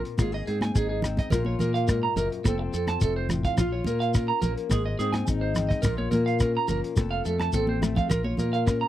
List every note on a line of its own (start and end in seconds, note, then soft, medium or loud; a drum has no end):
0.00 0.18 A#2 medium
0.00 0.15 A#3 medium
0.00 0.17 F4 medium
0.05 closed hi-hat soft
0.18 0.41 G#1 medium
0.18 1.28 G#2 medium
0.18 0.32 F4 medium
0.18 0.30 G#4 medium
0.18 kick medium
0.18 cross-stick medium
0.18 closed hi-hat soft
0.18 high conga medium
0.18 shekere medium
0.32 1.31 G#4 medium
0.32 0.44 D#5 medium
0.47 0.70 G#2 medium
0.47 1.03 C4 medium
0.47 0.58 G#4 medium
0.47 closed hi-hat soft
0.61 0.72 G#5 medium
0.61 cross-stick medium
0.61 closed hi-hat soft
0.61 high conga medium
0.75 1.20 G#1 medium
0.75 1.28 D#4 medium
0.75 0.87 G#4 medium
0.75 kick medium
0.75 closed hi-hat medium
0.75 shekere medium
0.89 1.00 G#4 medium
1.02 1.29 C4 medium
1.02 cross-stick medium
1.02 closed hi-hat medium
1.02 low conga medium
1.02 shekere medium
1.17 1.29 D#5 medium
1.17 kick medium
1.17 closed hi-hat soft
1.17 high conga medium
1.30 1.54 A#1 medium
1.30 2.45 A#2 medium
1.30 2.45 F4 medium
1.30 1.42 A#4 medium
1.30 kick medium
1.30 cross-stick medium
1.30 closed hi-hat medium
1.30 low conga medium
1.30 shekere medium
1.45 1.56 C#5 medium
1.45 high conga medium
1.59 2.05 A#2 medium
1.59 2.42 A#3 medium
1.59 1.71 A#4 medium
1.59 closed hi-hat medium
1.59 low conga medium
1.59 shekere medium
1.74 1.85 F5 medium
1.74 closed hi-hat soft
1.88 2.16 G#2 medium
1.88 1.99 A#4 medium
1.88 kick medium
1.88 cross-stick medium
1.88 closed hi-hat soft
1.88 shekere medium
2.03 2.13 A#5 medium
2.16 2.28 F#1 loud
2.16 2.44 F#2 medium
2.16 2.28 A#4 medium
2.16 closed hi-hat soft
2.16 low conga medium
2.16 shekere medium
2.32 closed hi-hat soft
2.44 2.67 F1 loud
2.44 3.55 F3 medium
2.44 3.59 C4 medium
2.44 2.55 A4 medium
2.44 3.56 A4 medium
2.44 muted steel-string acoustic guitar stroke medium
2.44 kick medium
2.44 cross-stick medium
2.44 closed hi-hat soft
2.44 high conga medium
2.44 shekere medium
2.59 muted clean electric guitar stroke medium
2.74 2.96 F2 medium
2.74 2.85 A4 medium
2.74 closed hi-hat soft
2.74 shekere medium
2.87 2.98 A5 medium
2.87 cross-stick medium
2.87 closed hi-hat soft
2.87 high conga medium
3.01 3.47 F1 medium
3.01 3.30 F#2 medium
3.01 3.12 A4 medium
3.01 kick medium
3.01 closed hi-hat soft
3.01 shekere medium
3.16 3.27 C5 medium
3.29 3.58 A2 medium
3.29 cross-stick medium
3.29 closed hi-hat soft
3.29 low conga medium
3.29 shekere medium
3.44 3.55 F5 medium
3.44 kick medium
3.44 closed hi-hat soft
3.57 3.81 A#1 medium
3.57 3.69 F4 medium
3.57 4.71 F4 medium
3.57 muted steel-string acoustic guitar stroke medium
3.57 kick medium
3.57 cross-stick medium
3.57 closed hi-hat soft
3.57 low conga medium
3.57 shekere medium
3.72 3.83 C#5 medium
3.84 4.31 A#2 medium
3.84 4.41 A#3 medium
3.84 3.98 A#4 medium
3.84 closed hi-hat soft
3.84 low conga medium
3.84 shekere medium
4.00 4.11 F5 medium
4.00 closed hi-hat soft
4.14 4.68 C#4 medium
4.14 4.25 A#4 medium
4.14 kick medium
4.14 cross-stick medium
4.14 closed hi-hat soft
4.14 shekere medium
4.28 4.39 A#5 medium
4.42 4.54 A#1 medium
4.42 4.68 A#3 medium
4.42 4.53 A#4 medium
4.42 closed hi-hat soft
4.42 low conga medium
4.42 shekere medium
4.58 closed hi-hat soft
4.69 4.94 G#1 loud
4.69 5.81 G#2 medium
4.69 4.82 G#4 medium
4.69 5.81 G#4 medium
4.69 kick medium
4.69 cross-stick medium
4.69 closed hi-hat soft
4.69 high conga medium
4.69 shekere medium
4.86 4.96 D#5 medium
4.99 5.22 G#2 medium
4.99 5.56 C4 medium
4.99 5.10 G#4 medium
4.99 closed hi-hat medium
4.99 shekere medium
5.12 5.23 G#5 medium
5.12 cross-stick medium
5.12 closed hi-hat soft
5.12 high conga medium
5.27 5.73 G#1 medium
5.27 5.81 D#4 medium
5.27 kick medium
5.27 closed hi-hat soft
5.27 shekere medium
5.41 5.52 C5 medium
5.55 5.81 C4 medium
5.55 cross-stick medium
5.55 closed hi-hat soft
5.55 low conga medium
5.55 shekere medium
5.69 5.80 D#5 medium
5.69 kick medium
5.69 closed hi-hat medium
5.69 high conga medium
5.82 6.07 A#1 medium
5.82 6.98 A#2 medium
5.82 5.94 A#4 medium
5.82 kick medium
5.82 cross-stick medium
5.82 closed hi-hat soft
5.82 low conga medium
5.82 shekere loud
5.86 6.97 F4 medium
5.98 6.09 C#5 medium
5.98 high conga medium
6.11 6.57 A#2 medium
6.11 6.69 A#3 medium
6.11 6.23 A#4 medium
6.11 closed hi-hat medium
6.11 high conga medium
6.11 low conga medium
6.11 shekere medium
6.26 6.37 F5 medium
6.26 closed hi-hat soft
6.40 6.94 C#4 medium
6.40 6.52 A#4 medium
6.40 kick medium
6.40 cross-stick medium
6.40 closed hi-hat medium
6.40 shekere medium
6.57 6.66 A#5 medium
6.68 6.81 F#1 medium
6.68 6.94 A#3 medium
6.68 6.80 A#4 medium
6.68 closed hi-hat soft
6.68 low conga medium
6.68 shekere medium
6.84 closed hi-hat soft
6.97 7.20 F1 medium
6.97 8.10 F2 medium
6.97 8.07 A4 medium
6.97 muted clean electric guitar stroke medium
6.97 kick medium
6.97 cross-stick medium
6.97 closed hi-hat soft
6.97 high conga medium
6.97 shekere loud
7.11 7.21 F5 medium
7.25 7.48 F2 medium
7.25 7.80 A3 soft
7.25 7.36 A4 medium
7.25 closed hi-hat soft
7.25 shekere medium
7.40 7.50 A5 medium
7.40 cross-stick medium
7.40 closed hi-hat soft
7.40 high conga medium
7.53 7.99 A1 medium
7.53 8.10 C4 medium
7.53 7.65 A4 medium
7.53 kick medium
7.53 closed hi-hat soft
7.53 high conga soft
7.53 shekere medium
7.67 7.79 C5 medium
7.67 high conga medium
7.82 8.07 A3 medium
7.82 cross-stick medium
7.82 closed hi-hat soft
7.82 low conga medium
7.82 shekere medium
7.96 8.07 F5 medium
7.96 kick medium
7.96 closed hi-hat soft
7.96 low conga medium
8.09 8.33 A#1 medium
8.09 8.88 F4 medium
8.09 8.21 A#4 medium
8.09 muted steel-string acoustic guitar stroke medium
8.09 kick medium
8.09 cross-stick medium
8.09 closed hi-hat soft
8.09 low conga medium
8.09 shekere medium
8.24 8.35 C#5 medium
8.24 high conga medium
8.37 8.83 A#2 medium
8.37 8.88 A#3 medium
8.37 8.50 A#4 medium
8.37 closed hi-hat soft
8.37 low conga medium
8.37 shekere medium
8.53 8.63 F5 medium
8.53 closed hi-hat soft
8.66 8.88 C#4 medium
8.66 8.78 A#4 medium
8.66 kick medium
8.66 cross-stick medium
8.66 closed hi-hat soft
8.66 shekere medium
8.81 8.88 A#5 medium